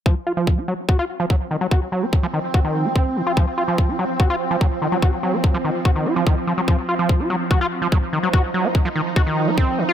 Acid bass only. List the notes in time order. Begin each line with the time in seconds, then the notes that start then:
0.06 F3
0.27 F4
0.37 F3
0.58 F4
0.68 F#3
0.89 F#4
0.99 F4
1.20 F3
1.30 F#3
1.51 D#3
1.61 F#3
1.71 F#4
1.92 F#3
2.02 C4
2.23 F3
2.34 D#3
2.54 F#4
2.65 D#3
2.85 C4
2.96 C4
3.16 D#3
3.27 F4
3.37 F3
3.58 F4
3.68 F3
3.89 F4
3.99 F#3
4.20 F#4
4.30 F4
4.51 F3
4.61 F#3
4.82 D#3
4.92 F#3
5.02 F#4
5.23 F#3
5.33 C4
5.54 F3
5.64 D#3
5.85 F#4
5.96 D#3
6.06 F4
6.16 F3
6.27 D#3
6.47 F3
6.58 F#3
6.68 F3
6.89 F4
6.99 F3
7.20 F4
7.30 F#3
7.51 F#4
7.61 F4
7.82 F3
7.92 F#3
8.13 D#3
8.23 F#3
8.33 F#4
8.54 F#3
8.64 C4
8.85 F3
8.96 D#3
9.16 F#4
9.27 D#3
9.47 C4
9.58 C4
9.78 D#3
9.89 F4